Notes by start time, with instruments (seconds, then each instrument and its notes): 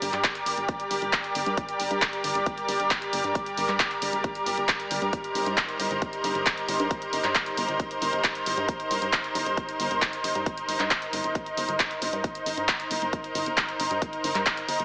Already playing: analog synth pad G3 G4 A#4 D5
0.02 analog synth bass G1, open hi-hat
0.13 analog synth bass G2, clap, closed hi-hat
0.24 kick, clap, closed hi-hat
0.35 closed hi-hat
0.46 analog synth bass G1, open hi-hat
0.57 analog synth bass G1, closed hi-hat
0.69 kick, closed hi-hat
0.80 closed hi-hat
0.91 analog synth bass G1, open hi-hat
1.02 analog synth bass G1, closed hi-hat
1.13 kick, clap, closed hi-hat
1.24 closed hi-hat
1.35 analog synth bass G1, open hi-hat
1.46 analog synth bass G2, closed hi-hat
1.57 kick, closed hi-hat
1.69 closed hi-hat
1.80 analog synth bass G1, open hi-hat
1.91 analog synth bass G2, closed hi-hat
2.02 kick, clap, closed hi-hat
2.13 closed hi-hat
2.24 analog synth bass G1, open hi-hat
2.35 analog synth bass G1, closed hi-hat
2.46 kick, closed hi-hat
2.58 closed hi-hat
2.69 analog synth bass G1, open hi-hat
2.80 analog synth bass G1, closed hi-hat
2.91 kick, clap, closed hi-hat
3.02 closed hi-hat
3.13 analog synth bass G1, open hi-hat
3.24 analog synth bass G2, closed hi-hat
3.35 kick, closed hi-hat
3.46 closed hi-hat
3.57 analog synth bass G1, open hi-hat
3.69 analog synth bass G2, clap, closed hi-hat
3.80 kick, clap, closed hi-hat
3.91 closed hi-hat
4.02 analog synth bass G1, open hi-hat
4.13 analog synth bass G1, closed hi-hat
4.24 kick, closed hi-hat
4.35 closed hi-hat
4.46 analog synth bass G1, open hi-hat
4.57 analog synth bass G1, closed hi-hat
4.69 kick, clap, closed hi-hat
4.80 closed hi-hat
4.91 analog synth bass G1, open hi-hat
5.02 analog synth bass G2, closed hi-hat
5.13 analog synth pad D#4 C5, kick, closed hi-hat
5.24 closed hi-hat
5.35 analog synth bass G1, open hi-hat
5.46 analog synth bass G2, closed hi-hat
5.57 kick, clap, closed hi-hat
5.69 closed hi-hat
5.80 analog synth bass G1, open hi-hat
5.91 analog synth bass G1, closed hi-hat
6.02 kick, closed hi-hat
6.13 closed hi-hat
6.24 analog synth bass G1, open hi-hat
6.35 analog synth bass G1, closed hi-hat
6.46 kick, clap, closed hi-hat
6.57 closed hi-hat
6.68 analog synth bass G1, open hi-hat
6.80 analog synth bass G2, closed hi-hat
6.91 kick, closed hi-hat
7.02 closed hi-hat
7.13 analog synth bass G1, open hi-hat
7.24 analog synth bass G2, clap, closed hi-hat
7.35 kick, clap, closed hi-hat
7.46 closed hi-hat
7.57 analog synth bass G1, open hi-hat
7.68 analog synth bass G1, closed hi-hat
7.80 kick, closed hi-hat
7.91 closed hi-hat
8.02 analog synth bass G1, open hi-hat
8.13 analog synth bass G1, closed hi-hat
8.24 kick, clap, closed hi-hat
8.35 closed hi-hat
8.46 analog synth bass G1, open hi-hat
8.57 analog synth bass G2, closed hi-hat
8.69 kick, closed hi-hat
8.80 closed hi-hat
8.91 analog synth bass G1, open hi-hat
9.02 analog synth bass G2, closed hi-hat
9.13 kick, clap, closed hi-hat
9.24 closed hi-hat
9.35 analog synth bass G1, open hi-hat
9.46 analog synth bass G1, closed hi-hat
9.57 kick, closed hi-hat
9.69 closed hi-hat
9.80 analog synth bass G1, open hi-hat
9.91 analog synth bass G1, closed hi-hat
10.02 kick, clap, closed hi-hat
10.13 closed hi-hat
10.24 analog synth bass G1, open hi-hat
10.35 analog synth bass G2, closed hi-hat
10.46 kick, closed hi-hat
10.57 closed hi-hat
10.69 analog synth bass G1, open hi-hat
10.80 analog synth bass G2, clap, closed hi-hat
10.91 kick, clap, closed hi-hat
11.02 closed hi-hat
11.13 analog synth bass G1, open hi-hat
11.24 analog synth bass G1, closed hi-hat
11.35 kick, closed hi-hat
11.46 closed hi-hat
11.57 analog synth bass G1, open hi-hat
11.69 analog synth bass G1, closed hi-hat
11.80 kick, clap, closed hi-hat
11.91 closed hi-hat
12.02 analog synth bass G1, open hi-hat
12.13 analog synth bass G2, closed hi-hat
12.24 analog synth pad A#4 C5, kick, closed hi-hat
12.35 closed hi-hat
12.46 analog synth bass G1, open hi-hat
12.57 analog synth bass G2, closed hi-hat
12.69 kick, clap, closed hi-hat
12.80 closed hi-hat
12.91 analog synth bass G1, open hi-hat
13.02 analog synth bass G1, closed hi-hat
13.13 kick, closed hi-hat
13.24 closed hi-hat
13.35 analog synth bass G1, open hi-hat
13.46 analog synth bass G1, closed hi-hat
13.57 kick, clap, closed hi-hat
13.69 closed hi-hat
13.80 analog synth bass G1, open hi-hat
13.91 analog synth bass G2, closed hi-hat
14.02 kick, closed hi-hat
14.13 closed hi-hat
14.24 analog synth bass G1, open hi-hat
14.35 analog synth bass G2, clap, closed hi-hat
14.46 kick, clap, closed hi-hat
14.57 closed hi-hat
14.68 analog synth bass G1, open hi-hat
14.80 analog synth bass G1, closed hi-hat